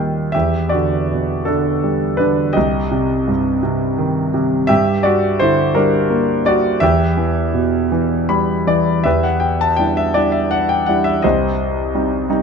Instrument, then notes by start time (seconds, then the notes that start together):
grand piano
Already playing: D#2 A#2 D#3 G3 G4 D#5 G5
0.32 E2 G4 E5
0.69 F#4 D5
0.74 D3
1.12 B2
1.45 D3 D4 A4
1.84 G3
2.17 D3 D4 B4
2.53 G4 D#5
2.57 C2
2.91 C3
3.28 G2
3.63 C3
3.98 D#3
4.34 C3
4.67 G2 G4 E5
5.03 G3 F#4 D5
5.40 D3 E4 C5
5.75 G3 D4 A#4
6.10 A#3
6.45 G3 F#4 D5
6.80 E2 G4 E5
7.17 E3
7.53 B2
7.92 E3
8.29 G3 B5
8.67 E3 D5
9.04 E2 G4 B4 E5
9.23 F#5
9.40 G5
9.61 A5
9.76 G3 D4 E4 G5
9.97 E5
10.14 G3 D4 E4 D5
10.32 E5
10.51 F#5
10.69 G5
10.86 G3 D4 E4 F#5
11.04 E5
11.22 C2 G4 C5 D#5
11.95 G3 C4 D#4
12.29 G3 C4 D#4